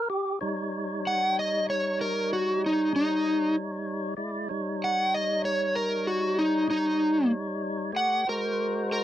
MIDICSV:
0, 0, Header, 1, 3, 480
1, 0, Start_track
1, 0, Tempo, 629591
1, 296, Time_signature, 12, 3, 24, 8
1, 6891, End_track
2, 0, Start_track
2, 0, Title_t, "Electric slide guitar"
2, 0, Program_c, 0, 29
2, 817, Note_on_c, 0, 78, 70
2, 1030, Note_off_c, 0, 78, 0
2, 1061, Note_on_c, 0, 75, 73
2, 1272, Note_off_c, 0, 75, 0
2, 1295, Note_on_c, 0, 73, 68
2, 1509, Note_off_c, 0, 73, 0
2, 1533, Note_on_c, 0, 70, 79
2, 1748, Note_off_c, 0, 70, 0
2, 1775, Note_on_c, 0, 66, 67
2, 1989, Note_off_c, 0, 66, 0
2, 2029, Note_on_c, 0, 63, 69
2, 2237, Note_off_c, 0, 63, 0
2, 2255, Note_on_c, 0, 63, 98
2, 2702, Note_off_c, 0, 63, 0
2, 3691, Note_on_c, 0, 78, 74
2, 3908, Note_off_c, 0, 78, 0
2, 3922, Note_on_c, 0, 75, 71
2, 4143, Note_off_c, 0, 75, 0
2, 4155, Note_on_c, 0, 73, 74
2, 4379, Note_off_c, 0, 73, 0
2, 4387, Note_on_c, 0, 70, 70
2, 4615, Note_off_c, 0, 70, 0
2, 4630, Note_on_c, 0, 66, 75
2, 4857, Note_off_c, 0, 66, 0
2, 4869, Note_on_c, 0, 63, 78
2, 5096, Note_off_c, 0, 63, 0
2, 5112, Note_on_c, 0, 63, 87
2, 5570, Note_off_c, 0, 63, 0
2, 6072, Note_on_c, 0, 78, 93
2, 6297, Note_off_c, 0, 78, 0
2, 6321, Note_on_c, 0, 70, 73
2, 6775, Note_off_c, 0, 70, 0
2, 6803, Note_on_c, 0, 70, 88
2, 6891, Note_off_c, 0, 70, 0
2, 6891, End_track
3, 0, Start_track
3, 0, Title_t, "Tonewheel organ"
3, 0, Program_c, 1, 16
3, 74, Note_on_c, 1, 67, 103
3, 298, Note_off_c, 1, 67, 0
3, 311, Note_on_c, 1, 73, 60
3, 314, Note_on_c, 1, 63, 64
3, 322, Note_on_c, 1, 55, 61
3, 3156, Note_off_c, 1, 73, 0
3, 3158, Note_off_c, 1, 63, 0
3, 3162, Note_off_c, 1, 55, 0
3, 3176, Note_on_c, 1, 74, 65
3, 3183, Note_on_c, 1, 64, 58
3, 3184, Note_on_c, 1, 56, 65
3, 3417, Note_off_c, 1, 74, 0
3, 3420, Note_off_c, 1, 64, 0
3, 3421, Note_off_c, 1, 56, 0
3, 3423, Note_on_c, 1, 73, 67
3, 3429, Note_on_c, 1, 63, 66
3, 3436, Note_on_c, 1, 55, 68
3, 6032, Note_off_c, 1, 73, 0
3, 6037, Note_off_c, 1, 63, 0
3, 6040, Note_off_c, 1, 55, 0
3, 6041, Note_on_c, 1, 73, 60
3, 6043, Note_on_c, 1, 57, 58
3, 6046, Note_on_c, 1, 67, 61
3, 6289, Note_off_c, 1, 73, 0
3, 6290, Note_off_c, 1, 57, 0
3, 6291, Note_off_c, 1, 67, 0
3, 6303, Note_on_c, 1, 72, 65
3, 6310, Note_on_c, 1, 66, 70
3, 6320, Note_on_c, 1, 56, 71
3, 6891, Note_off_c, 1, 56, 0
3, 6891, Note_off_c, 1, 66, 0
3, 6891, Note_off_c, 1, 72, 0
3, 6891, End_track
0, 0, End_of_file